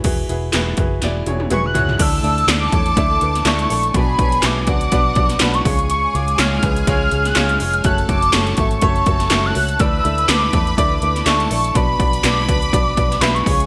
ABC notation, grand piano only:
X:1
M:4/4
L:1/8
Q:"Swing 16ths" 1/4=123
K:Dlyd
V:1 name="Grand piano"
[EFGB] [EFGB] [EFGB] [EFGB] [EFGd] [EFGc] [EFGB] [EFGc] | [A,DEAd] [A,DEAd] [A,DEAd] [A,DEAc] [A,DEAd] [A,DEAB] [A,DEAd] [A,DEAd] | [B,DFBd] [B,DFBc] [B,DFBe] [B,DFBd] [B,DFBd] [B,DFBd] [B,DFBd] [G,C^EGc]- | [G,C^EGc] [G,CEGc] [G,CEGc] [G,CEGB] [G,CEGc] [G,CEGc] [G,CEGc] [G,CEGc] |
[A,CFAc] [A,CFAc] [A,CFAc] [A,CFAe] [A,CFAc] [A,CFAc] [A,CFAe] [A,CFAc] | [A,DEAd] [A,DEAd] [A,DEAB] [A,DEAd] [A,DEAd] [A,DEAe] [A,DEAd] [A,DEAd] | [B,DFBd] [B,DFBd] [B,DFBd] [B,DFBd] [B,DFBd] [B,DFBd] [B,DFBe] [G,C^EGc] |]
V:2 name="Grand piano" clef=bass
E,3 z4 z | D,3 z4 z | B,,3 z4 C,- | C,2 z6 |
z8 | D,3 z4 z | B,,3 z4 C, |]